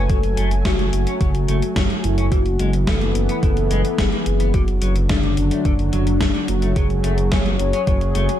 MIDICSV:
0, 0, Header, 1, 6, 480
1, 0, Start_track
1, 0, Key_signature, 3, "minor"
1, 0, Tempo, 555556
1, 83, Time_signature, 4, 2, 24, 8
1, 7254, End_track
2, 0, Start_track
2, 0, Title_t, "Soft synth lead"
2, 0, Program_c, 0, 80
2, 0, Note_on_c, 0, 71, 98
2, 82, Note_on_c, 0, 69, 104
2, 95, Note_off_c, 0, 71, 0
2, 564, Note_on_c, 0, 66, 92
2, 577, Note_off_c, 0, 69, 0
2, 796, Note_off_c, 0, 66, 0
2, 801, Note_on_c, 0, 66, 105
2, 1763, Note_on_c, 0, 64, 90
2, 1776, Note_off_c, 0, 66, 0
2, 1997, Note_off_c, 0, 64, 0
2, 2002, Note_on_c, 0, 66, 100
2, 2484, Note_on_c, 0, 69, 99
2, 2497, Note_off_c, 0, 66, 0
2, 2959, Note_off_c, 0, 69, 0
2, 2964, Note_on_c, 0, 69, 99
2, 3445, Note_on_c, 0, 68, 99
2, 3458, Note_off_c, 0, 69, 0
2, 3923, Note_on_c, 0, 66, 102
2, 3936, Note_off_c, 0, 68, 0
2, 4397, Note_off_c, 0, 66, 0
2, 4402, Note_on_c, 0, 62, 95
2, 4626, Note_off_c, 0, 62, 0
2, 4642, Note_on_c, 0, 62, 106
2, 5602, Note_on_c, 0, 66, 97
2, 5615, Note_off_c, 0, 62, 0
2, 5836, Note_off_c, 0, 66, 0
2, 5841, Note_on_c, 0, 68, 107
2, 6322, Note_on_c, 0, 73, 108
2, 6335, Note_off_c, 0, 68, 0
2, 6797, Note_off_c, 0, 73, 0
2, 6802, Note_on_c, 0, 73, 112
2, 7254, Note_off_c, 0, 73, 0
2, 7254, End_track
3, 0, Start_track
3, 0, Title_t, "Clean electric guitar"
3, 0, Program_c, 1, 27
3, 83, Note_on_c, 1, 54, 82
3, 143, Note_off_c, 1, 54, 0
3, 323, Note_on_c, 1, 57, 104
3, 413, Note_off_c, 1, 57, 0
3, 564, Note_on_c, 1, 61, 79
3, 599, Note_off_c, 1, 61, 0
3, 683, Note_on_c, 1, 54, 71
3, 719, Note_off_c, 1, 54, 0
3, 924, Note_on_c, 1, 61, 75
3, 983, Note_off_c, 1, 61, 0
3, 1043, Note_on_c, 1, 54, 80
3, 1103, Note_off_c, 1, 54, 0
3, 1282, Note_on_c, 1, 57, 102
3, 1372, Note_off_c, 1, 57, 0
3, 1522, Note_on_c, 1, 61, 79
3, 1559, Note_off_c, 1, 61, 0
3, 1643, Note_on_c, 1, 54, 73
3, 1679, Note_off_c, 1, 54, 0
3, 1883, Note_on_c, 1, 61, 73
3, 1943, Note_off_c, 1, 61, 0
3, 2003, Note_on_c, 1, 52, 79
3, 2063, Note_off_c, 1, 52, 0
3, 2242, Note_on_c, 1, 56, 102
3, 2332, Note_off_c, 1, 56, 0
3, 2482, Note_on_c, 1, 59, 80
3, 2518, Note_off_c, 1, 59, 0
3, 2602, Note_on_c, 1, 52, 72
3, 2638, Note_off_c, 1, 52, 0
3, 2843, Note_on_c, 1, 59, 77
3, 2903, Note_off_c, 1, 59, 0
3, 2963, Note_on_c, 1, 52, 81
3, 3023, Note_off_c, 1, 52, 0
3, 3203, Note_on_c, 1, 56, 104
3, 3293, Note_off_c, 1, 56, 0
3, 3444, Note_on_c, 1, 59, 83
3, 3479, Note_off_c, 1, 59, 0
3, 3563, Note_on_c, 1, 52, 73
3, 3599, Note_off_c, 1, 52, 0
3, 3803, Note_on_c, 1, 59, 74
3, 3863, Note_off_c, 1, 59, 0
3, 3924, Note_on_c, 1, 50, 81
3, 3983, Note_off_c, 1, 50, 0
3, 4163, Note_on_c, 1, 54, 99
3, 4253, Note_off_c, 1, 54, 0
3, 4404, Note_on_c, 1, 57, 80
3, 4439, Note_off_c, 1, 57, 0
3, 4524, Note_on_c, 1, 50, 70
3, 4559, Note_off_c, 1, 50, 0
3, 4763, Note_on_c, 1, 57, 74
3, 4823, Note_off_c, 1, 57, 0
3, 4883, Note_on_c, 1, 50, 79
3, 4943, Note_off_c, 1, 50, 0
3, 5123, Note_on_c, 1, 54, 100
3, 5213, Note_off_c, 1, 54, 0
3, 5363, Note_on_c, 1, 57, 81
3, 5399, Note_off_c, 1, 57, 0
3, 5482, Note_on_c, 1, 50, 73
3, 5519, Note_off_c, 1, 50, 0
3, 5723, Note_on_c, 1, 57, 72
3, 5783, Note_off_c, 1, 57, 0
3, 5843, Note_on_c, 1, 54, 81
3, 5903, Note_off_c, 1, 54, 0
3, 6083, Note_on_c, 1, 57, 98
3, 6173, Note_off_c, 1, 57, 0
3, 6323, Note_on_c, 1, 61, 80
3, 6359, Note_off_c, 1, 61, 0
3, 6443, Note_on_c, 1, 54, 71
3, 6479, Note_off_c, 1, 54, 0
3, 6683, Note_on_c, 1, 61, 74
3, 6743, Note_off_c, 1, 61, 0
3, 6803, Note_on_c, 1, 54, 79
3, 6863, Note_off_c, 1, 54, 0
3, 7042, Note_on_c, 1, 57, 104
3, 7133, Note_off_c, 1, 57, 0
3, 7254, End_track
4, 0, Start_track
4, 0, Title_t, "Analog synth pad"
4, 0, Program_c, 2, 89
4, 0, Note_on_c, 2, 54, 83
4, 0, Note_on_c, 2, 57, 90
4, 0, Note_on_c, 2, 80, 75
4, 1969, Note_off_c, 2, 54, 0
4, 1969, Note_off_c, 2, 80, 0
4, 1971, Note_off_c, 2, 57, 0
4, 2003, Note_on_c, 2, 59, 92
4, 2004, Note_on_c, 2, 52, 86
4, 3904, Note_off_c, 2, 52, 0
4, 3904, Note_off_c, 2, 59, 0
4, 3921, Note_on_c, 2, 50, 81
4, 3922, Note_on_c, 2, 54, 77
4, 5823, Note_off_c, 2, 50, 0
4, 5844, Note_on_c, 2, 68, 75
4, 7254, Note_off_c, 2, 54, 0
4, 7254, Note_off_c, 2, 68, 0
4, 7254, End_track
5, 0, Start_track
5, 0, Title_t, "Detuned saw bass"
5, 0, Program_c, 3, 39
5, 83, Note_on_c, 3, 30, 102
5, 302, Note_off_c, 3, 30, 0
5, 323, Note_on_c, 3, 30, 94
5, 542, Note_off_c, 3, 30, 0
5, 563, Note_on_c, 3, 30, 99
5, 782, Note_off_c, 3, 30, 0
5, 804, Note_on_c, 3, 30, 98
5, 913, Note_off_c, 3, 30, 0
5, 1042, Note_on_c, 3, 30, 83
5, 1262, Note_off_c, 3, 30, 0
5, 1283, Note_on_c, 3, 30, 100
5, 1393, Note_off_c, 3, 30, 0
5, 1522, Note_on_c, 3, 30, 92
5, 1632, Note_off_c, 3, 30, 0
5, 1763, Note_on_c, 3, 30, 100
5, 1982, Note_off_c, 3, 30, 0
5, 2002, Note_on_c, 3, 30, 104
5, 2221, Note_off_c, 3, 30, 0
5, 2243, Note_on_c, 3, 30, 97
5, 2462, Note_off_c, 3, 30, 0
5, 2482, Note_on_c, 3, 30, 99
5, 2701, Note_off_c, 3, 30, 0
5, 2722, Note_on_c, 3, 30, 97
5, 2832, Note_off_c, 3, 30, 0
5, 2962, Note_on_c, 3, 30, 83
5, 3182, Note_off_c, 3, 30, 0
5, 3202, Note_on_c, 3, 30, 103
5, 3312, Note_off_c, 3, 30, 0
5, 3442, Note_on_c, 3, 30, 93
5, 3552, Note_off_c, 3, 30, 0
5, 3682, Note_on_c, 3, 30, 96
5, 3901, Note_off_c, 3, 30, 0
5, 3923, Note_on_c, 3, 30, 101
5, 4142, Note_off_c, 3, 30, 0
5, 4162, Note_on_c, 3, 30, 96
5, 4382, Note_off_c, 3, 30, 0
5, 4403, Note_on_c, 3, 30, 96
5, 4622, Note_off_c, 3, 30, 0
5, 4643, Note_on_c, 3, 30, 96
5, 4752, Note_off_c, 3, 30, 0
5, 4883, Note_on_c, 3, 30, 83
5, 5102, Note_off_c, 3, 30, 0
5, 5123, Note_on_c, 3, 30, 80
5, 5342, Note_off_c, 3, 30, 0
5, 5363, Note_on_c, 3, 30, 90
5, 5472, Note_off_c, 3, 30, 0
5, 5602, Note_on_c, 3, 30, 106
5, 5822, Note_off_c, 3, 30, 0
5, 5842, Note_on_c, 3, 30, 101
5, 6062, Note_off_c, 3, 30, 0
5, 6081, Note_on_c, 3, 30, 98
5, 6301, Note_off_c, 3, 30, 0
5, 6323, Note_on_c, 3, 30, 102
5, 6542, Note_off_c, 3, 30, 0
5, 6562, Note_on_c, 3, 30, 92
5, 6672, Note_off_c, 3, 30, 0
5, 6802, Note_on_c, 3, 30, 84
5, 7022, Note_off_c, 3, 30, 0
5, 7042, Note_on_c, 3, 30, 101
5, 7152, Note_off_c, 3, 30, 0
5, 7254, End_track
6, 0, Start_track
6, 0, Title_t, "Drums"
6, 83, Note_on_c, 9, 36, 124
6, 83, Note_on_c, 9, 42, 56
6, 169, Note_off_c, 9, 36, 0
6, 169, Note_off_c, 9, 42, 0
6, 203, Note_on_c, 9, 42, 27
6, 289, Note_off_c, 9, 42, 0
6, 323, Note_on_c, 9, 42, 98
6, 409, Note_off_c, 9, 42, 0
6, 443, Note_on_c, 9, 42, 54
6, 530, Note_off_c, 9, 42, 0
6, 562, Note_on_c, 9, 36, 122
6, 563, Note_on_c, 9, 38, 116
6, 563, Note_on_c, 9, 42, 52
6, 649, Note_off_c, 9, 36, 0
6, 649, Note_off_c, 9, 38, 0
6, 649, Note_off_c, 9, 42, 0
6, 684, Note_on_c, 9, 42, 27
6, 770, Note_off_c, 9, 42, 0
6, 803, Note_on_c, 9, 42, 94
6, 889, Note_off_c, 9, 42, 0
6, 923, Note_on_c, 9, 42, 57
6, 1009, Note_off_c, 9, 42, 0
6, 1043, Note_on_c, 9, 36, 127
6, 1043, Note_on_c, 9, 42, 53
6, 1129, Note_off_c, 9, 36, 0
6, 1129, Note_off_c, 9, 42, 0
6, 1163, Note_on_c, 9, 42, 29
6, 1249, Note_off_c, 9, 42, 0
6, 1283, Note_on_c, 9, 42, 99
6, 1369, Note_off_c, 9, 42, 0
6, 1403, Note_on_c, 9, 42, 58
6, 1490, Note_off_c, 9, 42, 0
6, 1522, Note_on_c, 9, 36, 127
6, 1522, Note_on_c, 9, 38, 123
6, 1522, Note_on_c, 9, 42, 57
6, 1608, Note_off_c, 9, 38, 0
6, 1608, Note_off_c, 9, 42, 0
6, 1609, Note_off_c, 9, 36, 0
6, 1642, Note_on_c, 9, 42, 27
6, 1729, Note_off_c, 9, 42, 0
6, 1762, Note_on_c, 9, 42, 96
6, 1848, Note_off_c, 9, 42, 0
6, 1882, Note_on_c, 9, 42, 54
6, 1969, Note_off_c, 9, 42, 0
6, 2002, Note_on_c, 9, 36, 127
6, 2003, Note_on_c, 9, 42, 54
6, 2088, Note_off_c, 9, 36, 0
6, 2089, Note_off_c, 9, 42, 0
6, 2122, Note_on_c, 9, 42, 27
6, 2208, Note_off_c, 9, 42, 0
6, 2242, Note_on_c, 9, 42, 96
6, 2328, Note_off_c, 9, 42, 0
6, 2362, Note_on_c, 9, 42, 54
6, 2448, Note_off_c, 9, 42, 0
6, 2482, Note_on_c, 9, 36, 122
6, 2483, Note_on_c, 9, 38, 119
6, 2483, Note_on_c, 9, 42, 52
6, 2569, Note_off_c, 9, 36, 0
6, 2569, Note_off_c, 9, 38, 0
6, 2569, Note_off_c, 9, 42, 0
6, 2604, Note_on_c, 9, 42, 28
6, 2691, Note_off_c, 9, 42, 0
6, 2723, Note_on_c, 9, 42, 91
6, 2810, Note_off_c, 9, 42, 0
6, 2843, Note_on_c, 9, 42, 57
6, 2930, Note_off_c, 9, 42, 0
6, 2962, Note_on_c, 9, 36, 127
6, 2963, Note_on_c, 9, 42, 54
6, 3049, Note_off_c, 9, 36, 0
6, 3049, Note_off_c, 9, 42, 0
6, 3083, Note_on_c, 9, 42, 29
6, 3169, Note_off_c, 9, 42, 0
6, 3203, Note_on_c, 9, 42, 92
6, 3289, Note_off_c, 9, 42, 0
6, 3324, Note_on_c, 9, 42, 54
6, 3410, Note_off_c, 9, 42, 0
6, 3443, Note_on_c, 9, 36, 127
6, 3443, Note_on_c, 9, 38, 122
6, 3443, Note_on_c, 9, 42, 54
6, 3529, Note_off_c, 9, 36, 0
6, 3530, Note_off_c, 9, 38, 0
6, 3530, Note_off_c, 9, 42, 0
6, 3563, Note_on_c, 9, 42, 26
6, 3649, Note_off_c, 9, 42, 0
6, 3682, Note_on_c, 9, 42, 95
6, 3768, Note_off_c, 9, 42, 0
6, 3801, Note_on_c, 9, 42, 52
6, 3888, Note_off_c, 9, 42, 0
6, 3922, Note_on_c, 9, 42, 52
6, 3923, Note_on_c, 9, 36, 122
6, 4008, Note_off_c, 9, 42, 0
6, 4009, Note_off_c, 9, 36, 0
6, 4042, Note_on_c, 9, 42, 27
6, 4129, Note_off_c, 9, 42, 0
6, 4161, Note_on_c, 9, 42, 93
6, 4248, Note_off_c, 9, 42, 0
6, 4282, Note_on_c, 9, 42, 53
6, 4369, Note_off_c, 9, 42, 0
6, 4402, Note_on_c, 9, 38, 120
6, 4402, Note_on_c, 9, 42, 51
6, 4403, Note_on_c, 9, 36, 121
6, 4488, Note_off_c, 9, 38, 0
6, 4488, Note_off_c, 9, 42, 0
6, 4489, Note_off_c, 9, 36, 0
6, 4522, Note_on_c, 9, 42, 26
6, 4609, Note_off_c, 9, 42, 0
6, 4642, Note_on_c, 9, 42, 89
6, 4728, Note_off_c, 9, 42, 0
6, 4762, Note_on_c, 9, 42, 54
6, 4849, Note_off_c, 9, 42, 0
6, 4883, Note_on_c, 9, 36, 127
6, 4883, Note_on_c, 9, 42, 52
6, 4969, Note_off_c, 9, 36, 0
6, 4969, Note_off_c, 9, 42, 0
6, 5003, Note_on_c, 9, 42, 27
6, 5089, Note_off_c, 9, 42, 0
6, 5122, Note_on_c, 9, 42, 88
6, 5209, Note_off_c, 9, 42, 0
6, 5243, Note_on_c, 9, 42, 52
6, 5329, Note_off_c, 9, 42, 0
6, 5362, Note_on_c, 9, 36, 127
6, 5362, Note_on_c, 9, 38, 122
6, 5362, Note_on_c, 9, 42, 52
6, 5449, Note_off_c, 9, 36, 0
6, 5449, Note_off_c, 9, 38, 0
6, 5449, Note_off_c, 9, 42, 0
6, 5482, Note_on_c, 9, 42, 25
6, 5568, Note_off_c, 9, 42, 0
6, 5601, Note_on_c, 9, 42, 91
6, 5687, Note_off_c, 9, 42, 0
6, 5721, Note_on_c, 9, 42, 51
6, 5808, Note_off_c, 9, 42, 0
6, 5841, Note_on_c, 9, 42, 51
6, 5842, Note_on_c, 9, 36, 118
6, 5928, Note_off_c, 9, 42, 0
6, 5929, Note_off_c, 9, 36, 0
6, 5962, Note_on_c, 9, 42, 26
6, 6049, Note_off_c, 9, 42, 0
6, 6082, Note_on_c, 9, 42, 89
6, 6168, Note_off_c, 9, 42, 0
6, 6202, Note_on_c, 9, 42, 50
6, 6288, Note_off_c, 9, 42, 0
6, 6322, Note_on_c, 9, 36, 113
6, 6322, Note_on_c, 9, 38, 111
6, 6322, Note_on_c, 9, 42, 49
6, 6408, Note_off_c, 9, 38, 0
6, 6408, Note_off_c, 9, 42, 0
6, 6409, Note_off_c, 9, 36, 0
6, 6443, Note_on_c, 9, 42, 25
6, 6529, Note_off_c, 9, 42, 0
6, 6562, Note_on_c, 9, 42, 88
6, 6648, Note_off_c, 9, 42, 0
6, 6681, Note_on_c, 9, 42, 53
6, 6768, Note_off_c, 9, 42, 0
6, 6801, Note_on_c, 9, 42, 51
6, 6802, Note_on_c, 9, 36, 120
6, 6888, Note_off_c, 9, 42, 0
6, 6889, Note_off_c, 9, 36, 0
6, 6922, Note_on_c, 9, 42, 26
6, 7009, Note_off_c, 9, 42, 0
6, 7042, Note_on_c, 9, 42, 86
6, 7128, Note_off_c, 9, 42, 0
6, 7162, Note_on_c, 9, 42, 50
6, 7249, Note_off_c, 9, 42, 0
6, 7254, End_track
0, 0, End_of_file